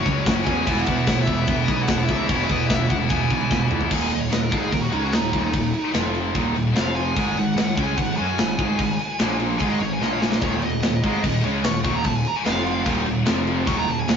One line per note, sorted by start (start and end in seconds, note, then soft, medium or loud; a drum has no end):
0.00 0.10 C#4 medium
0.00 0.21 C#5 medium
0.04 0.21 C#2 medium
0.04 0.24 F#2 loud
0.04 0.24 C#3 medium
0.04 0.24 F#3 medium
0.04 0.12 F#4 medium
0.04 kick medium
0.04 crash medium
0.11 0.18 C#4 medium
0.11 0.19 F#4 medium
0.19 0.26 C#4 medium
0.19 0.26 F#4 medium
0.26 0.41 F#1 medium
0.26 0.45 F#2 medium
0.26 0.45 C#3 medium
0.26 0.66 F#3 medium
0.26 0.33 C#4 medium
0.26 0.34 F#4 medium
0.26 kick loud
0.26 snare loud
0.26 crash medium
0.34 0.42 C#4 medium
0.34 0.41 F#4 medium
0.42 0.49 C#4 medium
0.42 0.50 F#4 medium
0.42 0.81 G#5 loud
0.47 0.62 E2 loud
0.47 0.66 F#2 medium
0.47 0.66 C#3 loud
0.47 0.66 F#3 medium
0.47 0.57 C#4 medium
0.47 kick loud
0.47 crash medium
0.51 0.58 F#4 medium
0.58 0.64 C#4 medium
0.58 0.66 F#4 medium
0.65 0.82 E1 loud
0.65 0.86 E2 loud
0.65 0.86 B2 loud
0.65 0.86 E3 loud
0.65 0.72 B3 medium
0.65 0.73 E4 medium
0.65 kick loud
0.65 crash medium
0.72 0.80 B3 medium
0.72 0.81 E4 medium
0.80 0.88 B3 medium
0.80 0.89 E4 medium
0.80 1.22 F#5 loud
0.86 1.02 E2 loud
0.86 1.06 E2 medium
0.86 1.06 B2 medium
0.86 0.95 B3 medium
0.86 0.97 E4 medium
0.86 kick medium
0.86 crash medium
0.95 1.03 B3 medium
0.95 1.05 E4 medium
1.04 1.22 E1 medium
1.04 1.11 B3 medium
1.04 1.12 E4 medium
1.04 kick loud
1.04 snare loud
1.04 crash medium
1.09 1.26 E2 medium
1.09 1.27 B2 medium
1.09 1.18 B3 medium
1.13 1.19 E4 medium
1.18 1.26 B3 medium
1.18 1.27 E4 medium
1.18 1.62 E5 loud
1.26 1.43 E1 medium
1.26 1.46 E2 medium
1.26 1.47 B2 medium
1.26 1.34 B3 medium
1.26 1.35 E4 medium
1.26 kick medium
1.26 crash medium
1.35 1.42 B3 medium
1.35 1.41 E4 medium
1.41 1.50 B3 medium
1.41 1.49 E4 medium
1.47 1.63 E1 medium
1.47 1.66 E2 medium
1.47 1.66 B2 loud
1.47 1.57 B3 medium
1.47 kick loud
1.47 crash medium
1.52 1.57 E4 medium
1.57 1.65 B3 medium
1.57 1.65 E4 medium
1.64 1.86 E2 medium
1.64 1.87 E3 medium
1.64 1.72 B3 medium
1.64 1.74 E4 medium
1.64 1.83 D#5 medium
1.64 crash medium
1.68 1.84 B1 medium
1.68 1.86 B2 medium
1.68 kick medium
1.73 1.80 B3 medium
1.73 1.81 E4 medium
1.81 1.89 B3 medium
1.81 1.89 E4 medium
1.81 2.04 F#5 loud
1.88 2.04 E1 medium
1.88 2.06 E2 medium
1.88 2.07 B2 medium
1.88 2.29 E3 medium
1.88 1.96 B3 medium
1.88 1.97 E4 medium
1.88 kick loud
1.88 snare loud
1.88 crash medium
1.97 2.04 B3 medium
1.97 2.04 E4 medium
2.04 2.12 B3 medium
2.04 2.11 E4 medium
2.04 2.25 E5 medium
2.04 crash medium
2.09 2.24 C#2 medium
2.09 2.28 E2 medium
2.09 2.28 B2 medium
2.09 2.28 E3 medium
2.09 2.19 B3 medium
2.09 2.19 E4 medium
2.09 kick medium
2.19 2.27 B3 medium
2.19 2.28 E4 medium
2.27 2.45 E1 loud
2.27 2.35 B3 medium
2.27 2.37 E4 loud
2.27 2.43 C#5 medium
2.27 kick loud
2.27 crash medium
2.31 2.49 E2 loud
2.31 2.49 B2 loud
2.31 2.49 E3 loud
2.36 2.44 B3 medium
2.36 2.44 E4 medium
2.44 2.51 B3 medium
2.44 2.51 E4 medium
2.44 2.49 C#5 medium
2.44 2.67 D#5 medium
2.49 2.64 E2 medium
2.49 2.68 E2 medium
2.49 2.68 B2 medium
2.49 2.59 B3 medium
2.49 2.59 E4 medium
2.49 kick medium
2.49 crash medium
2.59 2.68 B3 medium
2.59 2.67 E4 medium
2.67 2.85 E1 loud
2.67 2.88 E2 medium
2.67 2.89 B2 medium
2.67 2.75 B3 medium
2.67 2.76 E4 medium
2.67 2.89 E5 loud
2.67 kick loud
2.67 snare loud
2.67 crash medium
2.75 2.81 B3 medium
2.75 2.82 E4 medium
2.82 2.89 B3 medium
2.82 2.91 E4 medium
2.89 3.05 E1 loud
2.89 3.09 E2 medium
2.89 3.09 B2 medium
2.89 2.97 B3 medium
2.89 2.99 E4 medium
2.89 2.95 F#5 medium
2.89 kick medium
2.89 crash medium
2.98 3.05 B3 medium
2.98 3.06 E4 medium
3.06 3.14 B3 medium
3.06 3.13 E4 medium
3.06 3.67 G#5 medium
3.06 crash medium
3.10 3.25 E1 medium
3.10 3.28 E2 medium
3.10 3.29 B2 loud
3.10 3.22 B3 medium
3.10 3.21 E4 medium
3.10 kick loud
3.22 3.29 B3 medium
3.22 3.29 E4 medium
3.29 3.46 B1 medium
3.29 3.49 E2 medium
3.29 3.49 B2 medium
3.29 3.49 E3 medium
3.29 3.37 B3 medium
3.29 3.36 E4 medium
3.29 kick medium
3.29 crash medium
3.37 3.44 B3 medium
3.37 3.44 E4 medium
3.45 3.52 B3 medium
3.45 3.52 E4 medium
3.51 3.66 E1 medium
3.51 3.69 E2 medium
3.51 3.69 B2 loud
3.51 3.92 E3 loud
3.51 3.59 B3 medium
3.51 3.60 E4 medium
3.51 kick loud
3.51 snare medium
3.60 3.68 B3 medium
3.60 3.67 E4 medium
3.68 3.86 C#2 medium
3.68 3.90 E2 medium
3.68 3.90 B2 medium
3.68 3.90 E3 loud
3.68 3.75 B3 medium
3.68 3.76 E4 medium
3.68 mid tom loud
3.76 3.83 B3 medium
3.76 3.82 E4 medium
3.81 3.92 B3 medium
3.81 3.90 E4 medium
3.81 floor tom medium
3.90 4.10 D#1 loud
3.90 4.09 D#2 medium
3.90 4.09 A#2 loud
3.90 4.11 D#3 loud
3.90 4.11 G#5 medium
3.90 kick loud
3.90 crash loud
3.90 crash medium
4.10 4.31 D#1 medium
4.10 4.27 D#2 medium
4.10 4.27 A#2 medium
4.10 4.20 D#5 medium
4.10 crash medium
4.20 4.32 C#5 medium
4.30 4.51 D#1 medium
4.30 4.47 D#2 medium
4.30 4.47 A#2 medium
4.30 4.42 D#5 medium
4.30 snare loud
4.30 crash medium
4.43 4.54 A#4 medium
4.50 4.71 G#1 medium
4.50 4.71 G#2 medium
4.50 4.71 D#3 loud
4.50 4.72 G#3 loud
4.50 4.63 A4 medium
4.50 kick loud
4.50 crash medium
4.63 4.72 G#4 medium
4.71 4.91 D#1 medium
4.71 4.88 D#2 medium
4.71 4.88 A#2 medium
4.71 4.82 A#4 medium
4.71 kick medium
4.71 crash medium
4.81 4.92 F#4 medium
4.90 5.11 C#3 medium
4.90 5.11 G#3 medium
4.90 5.12 C#4 medium
4.90 5.04 D#4 medium
4.90 crash medium
4.95 5.13 C#2 loud
5.04 5.15 F#4 medium
5.12 5.33 D#1 medium
5.12 5.29 D#2 medium
5.12 5.29 A#2 medium
5.12 5.93 D#4 loud
5.12 snare loud
5.12 crash medium
5.32 5.53 D#1 medium
5.32 5.51 D#2 medium
5.32 5.51 A#2 medium
5.32 5.53 D#3 medium
5.32 kick medium
5.32 crash medium
5.52 5.73 D#1 medium
5.52 5.69 D#2 medium
5.52 5.69 A#2 medium
5.52 kick loud
5.52 crash medium
5.74 crash medium
5.92 6.33 F1 loud
5.92 6.32 F2 medium
5.92 6.33 C3 loud
5.92 6.34 F3 loud
5.92 snare loud
5.92 crash medium
6.15 crash medium
6.33 6.54 D#1 medium
6.33 6.53 D#2 medium
6.33 6.53 A#2 loud
6.33 6.55 D#3 loud
6.33 kick loud
6.33 crash medium
6.54 6.75 D#1 medium
6.54 6.74 D#2 medium
6.54 6.71 A#2 medium
6.54 crash medium
6.74 7.14 F1 medium
6.74 7.15 F2 medium
6.74 7.15 C3 loud
6.74 7.15 F3 medium
6.74 6.95 F5 loud
6.74 snare loud
6.74 crash medium
6.96 7.35 G#5 medium
6.96 crash medium
7.15 7.36 G#1 medium
7.15 7.35 G#2 loud
7.15 7.35 D#3 loud
7.15 7.36 G#3 loud
7.15 kick loud
7.15 crash medium
7.36 7.55 G#1 medium
7.36 7.53 G#2 medium
7.36 7.53 D#3 medium
7.36 7.76 F#5 medium
7.36 crash medium
7.56 7.75 G#1 medium
7.56 7.73 G#2 medium
7.56 7.74 D#3 medium
7.56 snare loud
7.56 crash medium
7.77 7.96 C#2 loud
7.77 7.97 C#3 loud
7.77 7.97 G#3 medium
7.77 7.98 C#4 loud
7.77 7.97 G#5 loud
7.77 kick loud
7.77 crash medium
7.97 8.17 G#1 medium
7.97 8.14 G#2 medium
7.97 8.14 D#3 medium
7.97 8.16 F#5 medium
7.97 kick medium
7.97 crash medium
8.17 8.38 F#2 medium
8.17 8.38 F#3 medium
8.17 8.38 C#4 medium
8.17 8.38 F#4 medium
8.17 9.36 G#5 loud
8.17 crash medium
8.38 8.59 G#1 medium
8.38 8.55 G#2 medium
8.38 8.55 D#3 medium
8.38 snare loud
8.38 crash medium
8.58 8.78 G#1 medium
8.58 8.78 G#2 medium
8.58 8.78 D#3 medium
8.58 8.79 G#3 loud
8.58 kick loud
8.58 crash medium
8.78 8.98 G#1 medium
8.78 8.95 G#2 medium
8.78 8.96 D#3 medium
8.78 kick medium
8.78 crash medium
8.99 crash medium
9.19 9.58 A#1 loud
9.19 9.59 A#2 medium
9.19 9.60 F3 medium
9.19 9.61 A#3 loud
9.19 snare loud
9.19 crash medium
9.40 crash medium
9.59 9.79 G#1 medium
9.59 9.80 G#2 medium
9.59 9.80 D#3 loud
9.59 9.81 G#3 loud
9.59 9.69 G#5 medium
9.59 kick loud
9.59 crash medium
9.69 9.79 D#5 medium
9.80 10.00 G#1 medium
9.80 9.97 G#2 medium
9.80 9.98 D#3 medium
9.80 9.90 C#5 medium
9.80 crash medium
9.93 10.02 G#5 medium
10.00 10.39 A#1 medium
10.00 10.41 A#2 loud
10.00 10.41 F3 medium
10.00 10.42 A#3 medium
10.00 10.12 D#5 loud
10.00 snare medium
10.12 10.22 C#5 medium
10.22 10.32 G#5 medium
10.22 snare loud
10.31 10.41 D#5 loud
10.31 snare medium
10.41 10.61 D#1 medium
10.41 10.61 D#2 loud
10.41 10.61 A#2 medium
10.41 10.62 D#3 loud
10.41 10.62 C#5 medium
10.41 kick loud
10.41 crash medium
10.62 10.79 D#2 medium
10.62 10.79 A#2 medium
10.62 11.42 D#5 loud
10.62 crash medium
10.66 10.83 D#1 medium
10.82 11.03 D#1 medium
10.82 10.99 D#2 medium
10.82 10.99 A#2 medium
10.82 snare loud
10.82 crash medium
11.04 11.22 G#1 medium
11.04 11.23 G#2 loud
11.04 11.23 D#3 loud
11.04 11.24 G#3 medium
11.04 kick loud
11.04 crash medium
11.24 11.43 D#1 medium
11.24 11.40 D#2 medium
11.24 11.40 A#2 medium
11.24 kick loud
11.24 crash medium
11.43 11.63 C#2 medium
11.43 11.64 C#3 loud
11.43 11.64 G#3 medium
11.43 11.65 C#4 medium
11.43 crash medium
11.64 11.83 D#1 medium
11.64 11.80 D#2 medium
11.64 11.81 A#2 medium
11.64 11.74 C#6 loud
11.64 snare loud
11.64 crash medium
11.83 12.04 D#1 medium
11.83 12.04 D#2 medium
11.83 12.04 A#2 medium
11.83 12.05 D#3 medium
11.83 11.95 C#6 loud
11.83 kick loud
11.83 crash medium
11.95 12.05 A#5 medium
12.04 12.24 D#1 medium
12.04 12.21 D#2 medium
12.04 12.21 A#2 medium
12.04 12.15 A5 loud
12.04 kick loud
12.04 crash medium
12.17 12.26 G#5 medium
12.25 12.36 A#5 loud
12.25 crash medium
12.36 12.45 G#5 loud
12.45 12.84 F1 loud
12.45 12.85 F2 medium
12.45 12.86 C3 loud
12.45 12.86 F3 medium
12.45 12.85 F5 loud
12.45 snare loud
12.45 crash medium
12.66 crash medium
12.86 13.05 D#1 loud
12.86 13.05 D#2 medium
12.86 13.05 A#2 loud
12.86 13.07 D#3 loud
12.86 kick loud
12.86 crash medium
13.06 13.26 D#1 medium
13.06 13.23 D#2 medium
13.06 13.23 A#2 medium
13.06 crash medium
13.25 13.65 F1 medium
13.25 13.66 F2 medium
13.25 13.66 C3 medium
13.25 13.67 F3 loud
13.25 snare loud
13.25 crash medium
13.47 crash medium
13.67 13.87 D#1 loud
13.67 13.86 D#2 loud
13.67 13.87 A#2 loud
13.67 13.88 D#3 loud
13.67 13.77 C#6 medium
13.67 kick loud
13.67 crash medium
13.78 13.90 A#5 loud
13.87 14.07 D#1 medium
13.87 14.04 D#2 medium
13.87 14.05 A#2 medium
13.87 13.99 A5 medium
13.87 crash medium
14.00 14.09 G#5 loud
14.08 14.17 D#1 medium
14.08 14.17 D#2 medium
14.08 14.17 A#2 medium
14.08 snare loud
14.08 crash medium
14.13 14.17 F#5 loud